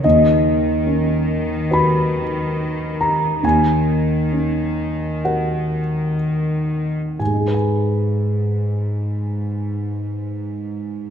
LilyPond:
<<
  \new Staff \with { instrumentName = "Grand piano" } { \time 4/4 \key gis \minor \tempo 4 = 65 << { dis''2 b''4. ais''8 | gis''2 fis''4 r4 | <gis, gis dis' gis' b' gis''>1 | } \\ { dis,4 cis'4 <fis' b'>2 | dis,4 cis'4 <fis' ais'>2 | r1 | } >> }
  \new Staff \with { instrumentName = "Cello section" } { \clef bass \time 4/4 \key gis \minor dis1 | dis2.~ dis8. r16 | gis,1 | }
>>